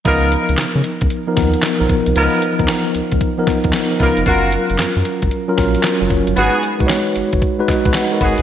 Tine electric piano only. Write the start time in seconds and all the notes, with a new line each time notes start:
0.05 F3 B3 D#4 A#4
1.27 F3 B3 D#4 A#4
1.36 F3 B3 D#4 A#4
1.79 F3 B3 D#4 A#4
2.15 F3 B3 D#4 A#4
2.58 F3 B3 D#4 A#4
3.38 F3 B3 D#4 A#4
3.64 F3 B3 D#4 A#4
3.90 F3 B3 D#4 A#4
4.26 F#3 C#4 F4 A#4
5.48 F#3 C#4 F4 A#4
5.57 F#3 C#4 F4 A#4
6.00 F#3 C#4 F4 C#5
6.36 G#3 D#4 F#4 B4
6.79 G#3 D#4 F#4 B4
6.87 C#5
7.59 G#3 D#4 F#4 B4
7.69 D#5
7.85 G#3 D#4 F#4 B4
7.95 F#5
8.11 G#3 D#4 F#4 A#4
8.21 B5